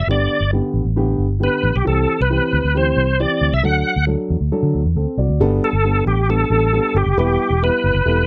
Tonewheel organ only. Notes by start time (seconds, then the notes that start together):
0.11 D5
1.44 B4
1.76 G4
1.87 A4
2.22 B4
2.77 C5
3.20 D5
3.54 E5
3.65 F#5
5.64 A4
6.07 G4
6.30 A4
6.96 G4
7.19 G4
7.64 B4